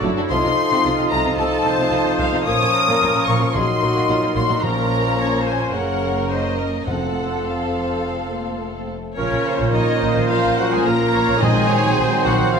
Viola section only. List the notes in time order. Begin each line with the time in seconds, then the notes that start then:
0.05 E4
0.31 F4
0.57 D#4
0.85 F4
1.37 A4
1.65 C5
2.47 C#5
2.74 A#4
3.55 G#4
3.82 F#4
4.09 F4
4.37 F#4
4.64 A#4
5.18 C#5
5.46 C5
5.74 A#4
6.30 C5
6.58 A#4
6.88 A4
9.18 A#4
9.46 C5
9.75 C#5
10.03 C5
10.88 A#4
11.14 C#5
11.41 D#5
11.69 C#5
11.98 C5
12.53 A#4